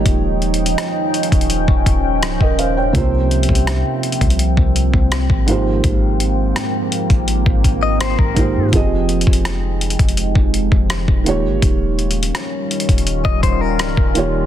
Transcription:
Already playing: felt piano D#3 A#3 F4 G4 C#5, ambient pad F3 C#4 D#4 G5
0.06 808-style bass D#1, kick, closed hi-hat
0.42 closed hi-hat
0.54 closed hi-hat
0.66 closed hi-hat
0.78 cross-stick, closed hi-hat
1.14 closed hi-hat
1.23 closed hi-hat
1.32 808-style bass D#1, kick, closed hi-hat
1.41 closed hi-hat
1.50 closed hi-hat
1.68 808-style bass D#1, kick
1.86 808-style bass D#1, kick, closed hi-hat
2.23 808-style bass C#1, cross-stick, closed hi-hat
2.41 808-style bass D#1, felt piano A#4 D#5, kick
2.59 felt piano C5 F5, closed hi-hat
2.77 felt piano C#5 G5
2.93 808-style bass C2, felt piano C3 A#3 F4 G4, ambient pad F3 A#3 C4, kick, closed hi-hat
2.98 felt piano C5
3.31 closed hi-hat
3.43 closed hi-hat
3.49 808-style bass C2, kick
3.55 closed hi-hat
3.67 cross-stick, closed hi-hat
4.03 closed hi-hat
4.12 closed hi-hat
4.21 808-style bass C2, kick, closed hi-hat
4.30 closed hi-hat
4.39 closed hi-hat
4.57 808-style bass C2, kick
4.76 closed hi-hat
4.94 808-style bass C2, kick
5.12 cross-stick, closed hi-hat
5.30 808-style bass G#1, kick
5.46 felt piano G#2 D#3 A#3 F4 G4, ambient pad A#3, closed hi-hat
5.51 felt piano C5
5.84 808-style bass G#1, kick, closed hi-hat
6.20 closed hi-hat
6.56 cross-stick, closed hi-hat
6.92 closed hi-hat
7.10 808-style bass G#1, kick, closed hi-hat
7.28 closed hi-hat
7.46 808-style bass G#1, kick
7.64 808-style bass G#1, kick, closed hi-hat
7.83 clean electric guitar D#5
8.01 clean electric guitar C5, cross-stick, closed hi-hat
8.19 808-style bass G#1, clean electric guitar A#4, kick
8.35 felt piano G#2 D#3 A#3 F4 G4, kick, closed hi-hat
8.40 felt piano C5
8.55 808-style bass G#2
8.72 808-style bass F1, felt piano F3 C4 G4 G#4, ambient pad F3 G#3 D#4 G5, kick, closed hi-hat
8.76 felt piano D#5
9.09 closed hi-hat
9.21 closed hi-hat
9.27 808-style bass F1, kick
9.33 closed hi-hat
9.45 cross-stick, closed hi-hat
9.81 closed hi-hat
9.90 closed hi-hat
9.99 808-style bass F1, kick, closed hi-hat
10.09 closed hi-hat
10.17 closed hi-hat
10.35 808-style bass F1, kick
10.54 closed hi-hat
10.72 808-style bass F1, kick
10.90 cross-stick, closed hi-hat
11.08 808-style bass D#1, kick
11.24 felt piano D#3 A#3 F4 G4, ambient pad D#3 G3 C#4 F4, closed hi-hat
11.29 felt piano C#5
11.45 808-style bass G1
11.62 808-style bass D#1, kick, closed hi-hat
11.99 closed hi-hat
12.11 closed hi-hat
12.23 closed hi-hat
12.35 cross-stick, closed hi-hat
12.71 closed hi-hat
12.80 closed hi-hat
12.89 808-style bass D#1, kick, closed hi-hat
12.98 closed hi-hat
13.07 closed hi-hat
13.25 808-style bass D#1, clean electric guitar D#5, kick
13.43 808-style bass D#1, clean electric guitar C5, kick, closed hi-hat
13.61 clean electric guitar A#4
13.79 808-style bass C#1, cross-stick, closed hi-hat
13.97 808-style bass D#1, kick
14.14 felt piano D#3 A#3 F4 G4, closed hi-hat
14.18 felt piano C#5

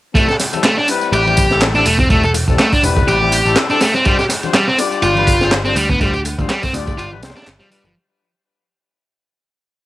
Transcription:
0.15 brass ensemble G3 C4 E4 A4, distorted electric guitar A3, kick, ride, tambourine, high bongo
0.28 distorted electric guitar A4, snare, tambourine
0.39 snare, open hi-hat, ride, tambourine, high conga
0.53 brass ensemble G3 C4 E4 A4, ride, tambourine, high bongo, low conga
0.64 distorted electric guitar A3, snare, clap, ride, tambourine
0.77 distorted electric guitar D4, snare, high bongo, high conga
0.88 brass ensemble G3 C4 E4 B4, open hi-hat, ride, tambourine
1.01 tambourine
1.12 picked electric bass A1, distorted electric guitar G4, ride, tambourine, high bongo, high conga
1.26 brass ensemble G3 C4 E4 G4, ride, low conga
1.37 kick, open hi-hat, ride, tambourine, high bongo
1.50 brass ensemble G3 C4 E4 A4, snare, tambourine, high conga
1.61 snare, clap, ride, tambourine
1.74 brass ensemble G3 C4 E4 A4, distorted electric guitar D4, tambourine, high bongo
1.86 picked electric bass E1, distorted electric guitar A3, open hi-hat, ride, tambourine
1.99 distorted electric guitar C4, kick, tambourine, high bongo, high conga
2.10 brass ensemble G3 C4 E4 A4, distorted electric guitar A3, kick, ride, tambourine
2.23 distorted electric guitar A4, ride, tambourine
2.34 open hi-hat, ride, tambourine, high bongo, high conga
2.47 picked electric bass E1, brass ensemble G3 C4 E4 A4, kick, tambourine, low conga
2.59 distorted electric guitar A3, snare, clap, ride, tambourine
2.72 distorted electric guitar D4, kick, open hi-hat, high conga
2.83 picked electric bass E1, brass ensemble G3 C4 E4 B4, open hi-hat, ride, tambourine
2.97 kick, tambourine, high bongo
3.08 picked electric bass A1, distorted electric guitar G4, ride, tambourine, high conga
3.20 brass ensemble G3 C4 E4 G4, high bongo, low conga
3.32 open hi-hat, ride, tambourine
3.45 picked electric bass A1, brass ensemble G3 C4 E4 A4, tambourine, high conga
3.56 snare, clap, ride, tambourine, high bongo
3.70 brass ensemble G3 C4 E4 A4, distorted electric guitar D4, tambourine
3.81 distorted electric guitar A3, snare, open hi-hat, ride, tambourine
3.94 distorted electric guitar C4, snare, tambourine, high conga
4.05 distorted electric guitar G3, brass ensemble G3 D4 F4 C5, kick, ride, tambourine
4.18 distorted electric guitar G4, snare, tambourine, high bongo
4.29 snare, open hi-hat, ride, tambourine, high conga
4.43 brass ensemble G3 D4 F4 C5, ride, tambourine, high bongo, low conga
4.54 distorted electric guitar G3, snare, clap, ride, tambourine
4.67 distorted electric guitar C4, snare, high conga
4.79 brass ensemble G3 D4 F4 D5, open hi-hat, ride, tambourine, high bongo
4.92 tambourine
5.02 picked electric bass G1, distorted electric guitar F4, ride, tambourine, high bongo, high conga
5.15 brass ensemble G3 D4 F4 B4, ride, low conga
5.27 kick, open hi-hat, ride, tambourine
5.41 brass ensemble G3 D4 F4 C5, snare, tambourine, high bongo, high conga
5.51 snare, clap, ride, tambourine
5.65 brass ensemble G3 D4 F4 C5, distorted electric guitar C4, tambourine, high bongo
5.76 picked electric bass D2, distorted electric guitar G3, open hi-hat, ride, tambourine
5.90 distorted electric guitar B3, kick, tambourine, high conga
6.01 distorted electric guitar G3, brass ensemble G3 D4 F4 C5, kick, ride, tambourine, high bongo
6.13 distorted electric guitar G4, ride, tambourine
6.25 open hi-hat, ride, tambourine, high bongo, high conga
6.38 picked electric bass D2, brass ensemble G3 D4 F4 C5, kick, tambourine, low conga
6.49 distorted electric guitar G3, snare, clap, ride, tambourine
6.62 distorted electric guitar C4, kick, open hi-hat, tambourine, high bongo, high conga
6.73 picked electric bass D2, brass ensemble G3 D4 F4 D5, open hi-hat, ride, tambourine
6.87 kick, tambourine, high bongo
6.98 picked electric bass G1, distorted electric guitar F4, ride, tambourine, high conga
7.11 brass ensemble G3 D4 F4 B4, low conga
7.22 picked electric bass C2, brass ensemble G3 D4 F4 C5, snare, open hi-hat, ride, tambourine, high bongo
7.30 snare, ride
7.36 distorted electric guitar D4, snare, ride, tambourine, high conga
7.42 snare, ride
7.47 picked electric bass G1, snare, clap, ride, tambourine, high bongo
7.60 distorted electric guitar G3, brass ensemble G3 D4 F4 C5, snare, tambourine
7.71 brass ensemble G3 D4 F4 B4, distorted electric guitar G3, open hi-hat, ride, tambourine
7.84 picked electric bass G1, distorted electric guitar F3, tambourine, high bongo, high conga

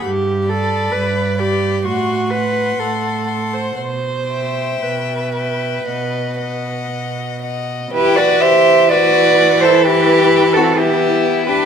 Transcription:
0.03 cello G2, viola G4
0.48 viola A4, violin D5 B5
0.92 cello G2, viola B4
1.38 viola G4, violin D5 B5
1.85 cello A2, viola F#4, violin F#5 C6
2.30 viola B4, violin F#5 C6
2.78 cello A2, viola A4
3.27 violin F#5 C6
3.53 viola C5
3.77 cello B2, viola C5
4.31 violin E5 G5
4.82 cello B2, viola B4
5.33 violin E5 G5
5.84 cello B2, violin D#5 F#5
6.39 violin D#5 F#5
6.89 cello B2
7.42 violin D#5 F#5
7.91 viola E3, violin E4 G4, cello B4
8.16 violin F#4 B4, cello D5
8.40 violin G4 C5, cello E5
8.89 violin F#4 B4, cello D5
9.61 violin E4 A4, cello C5
9.83 violin E4 G4, cello B4
10.53 violin F#4, cello A4
10.57 violin C4
10.77 violin E4, cello G4
10.82 violin B3
11.47 violin D4 G4, cello B4

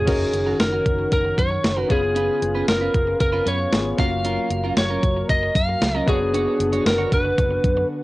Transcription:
Already playing: lead electric guitar G#4
0.05 fingered electric bass F#1, analog synth pad D#3 C#4 F#4, grand piano C#4 D#4 F#4 A#4, clean electric guitar C#4 F#4 A#4, kick, closed hi-hat, crash
0.33 fingered electric bass F#1, muted clean electric guitar stroke, closed hi-hat
0.46 clean electric guitar C#4 F#4 A#4
0.59 fingered electric bass F#1, lead electric guitar A#4, muted clean electric guitar stroke, snare, closed hi-hat
0.73 clean electric guitar C#4 F#4 A#4
0.86 fingered electric bass F#1, muted clean electric guitar stroke, kick, closed hi-hat
0.99 muted clean electric guitar stroke
1.12 fingered electric bass F#1, lead electric guitar A#4, muted clean electric guitar stroke, kick, closed hi-hat
1.25 muted clean electric guitar stroke
1.38 fingered electric bass F#2, lead electric guitar C#5, kick, closed hi-hat
1.51 muted clean electric guitar stroke
1.64 fingered electric bass F#1, muted clean electric guitar stroke, snare, closed hi-hat
1.77 clean electric guitar C#4 F#4 A#4, lead electric guitar B4
1.88 fingered electric bass F#1, analog synth pad C#3 B3 F4, grand piano B3 C#4 F4 G#4, clean electric guitar C#4 F4 B4, lead electric guitar G#4, kick, closed hi-hat
2.03 muted clean electric guitar stroke
2.15 clean electric guitar C#4 F4 B4, closed hi-hat
2.42 fingered electric bass F#1, muted clean electric guitar stroke, closed hi-hat
2.55 clean electric guitar C#4 F4 B4
2.68 fingered electric bass F#1, lead electric guitar A#4, snare, closed hi-hat
2.81 clean electric guitar C#4 F4 B4
2.94 fingered electric bass F#1, muted clean electric guitar stroke, kick, closed hi-hat
3.07 muted clean electric guitar stroke
3.20 fingered electric bass F#1, lead electric guitar A#4, muted clean electric guitar stroke, kick, closed hi-hat
3.33 clean electric guitar C#4 F4 B4
3.46 fingered electric bass F#2, clean electric guitar C#4 F4 B4, lead electric guitar C#5, closed hi-hat
3.59 muted clean electric guitar stroke
3.72 fingered electric bass G#1, grand piano B3 C#4 F4 G#4, snare, closed hi-hat
3.85 muted clean electric guitar stroke
3.97 fingered electric bass F#1, analog synth pad F#3 A#3 A#4, grand piano A#3 C#4 F4 F#4, clean electric guitar C#4 F4 A#4, lead electric guitar F5, kick, closed hi-hat
4.11 muted clean electric guitar stroke
4.25 clean electric guitar C#4 F4 A#4, closed hi-hat
4.50 fingered electric bass F#1, muted clean electric guitar stroke, closed hi-hat
4.64 clean electric guitar C#4 F4 A#4
4.76 fingered electric bass F#1, lead electric guitar C#5, snare, closed hi-hat
4.90 clean electric guitar C#4 F4 A#4
5.03 fingered electric bass F#1, muted clean electric guitar stroke, kick, closed hi-hat
5.17 muted clean electric guitar stroke
5.29 fingered electric bass F#1, lead electric guitar D#5, muted clean electric guitar stroke, kick, closed hi-hat
5.43 muted clean electric guitar stroke
5.55 fingered electric bass F#2, lead electric guitar F5, kick, closed hi-hat
5.69 muted clean electric guitar stroke
5.81 fingered electric bass C#2, muted clean electric guitar stroke, snare, closed hi-hat
5.95 clean electric guitar C#4 F4 A#4, lead electric guitar D#5
6.06 fingered electric bass F#1, analog synth pad D3 B3 F#4, grand piano B3 C#4 D4 F#4, clean electric guitar D4 F#4 C#5, lead electric guitar G#4, kick, closed hi-hat
6.21 muted clean electric guitar stroke
6.34 clean electric guitar D4 F#4 C#5, closed hi-hat
6.60 fingered electric bass F#1, muted clean electric guitar stroke, closed hi-hat
6.73 clean electric guitar D4 F#4 C#5, closed hi-hat
6.85 fingered electric bass F#1, lead electric guitar A#4, snare, closed hi-hat
6.98 clean electric guitar D4 F#4 C#5
7.12 fingered electric bass F#1, lead electric guitar B4, muted clean electric guitar stroke, kick, closed hi-hat
7.25 muted clean electric guitar stroke
7.38 fingered electric bass F#1, muted clean electric guitar stroke, kick, closed hi-hat
7.51 muted clean electric guitar stroke
7.64 fingered electric bass F#2, kick, closed hi-hat
7.77 muted clean electric guitar stroke

